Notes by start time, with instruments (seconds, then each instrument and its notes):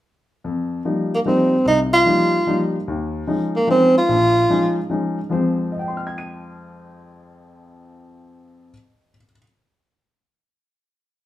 0.44 upright piano F2
0.85 upright piano F3 G3 A#3 D#4
1.15 tenor saxophone A#3
1.25 upright piano F3 G3 A#3 D#4, tenor saxophone C4
1.66 upright piano C2, tenor saxophone D#4
1.93 tenor saxophone F4
2.06 upright piano F3 G3 A#3 D#4
2.47 upright piano F3 G3 A#3 D#4
2.88 upright piano D#2
3.27 upright piano F3 G#3 C#4 D#4
3.56 tenor saxophone A#3
3.67 upright piano F3 G#3 C#4 D#4, tenor saxophone C4
3.98 tenor saxophone F4
4.09 upright piano A#1
4.50 upright piano F3 G#3 C#4 D#4
4.90 upright piano F3 G#3 C#4 D#4
5.29 upright piano F2 F3 G#3 C4 C5
5.72 upright piano D#5
5.79 upright piano G5
5.88 upright piano C6
5.97 upright piano F6
6.07 upright piano G#6
6.18 upright piano D#7